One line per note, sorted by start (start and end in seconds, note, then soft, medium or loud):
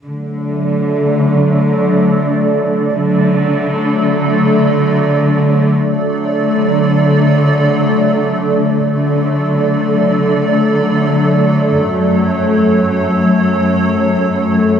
0.04 2.97 D3 soft
0.04 2.97 F#3 soft
0.04 2.97 A3 soft
0.04 2.97 A4 medium
0.04 2.97 D5 medium
3.01 5.73 D3 soft
3.01 5.93 F#3 medium
3.01 5.93 A3 medium
3.01 5.93 A4 medium
3.01 5.93 D5 medium
5.97 8.89 D3 soft
5.97 8.89 F#3 soft
5.97 8.89 A3 medium
5.97 8.89 A4 medium
5.97 8.89 D5 medium
8.93 11.85 D3 soft
8.93 14.80 F#3 medium
8.93 14.80 A3 soft
8.93 14.80 A4 medium
8.93 11.86 D5 soft
11.89 14.80 F#2 soft
11.89 14.80 C#5 medium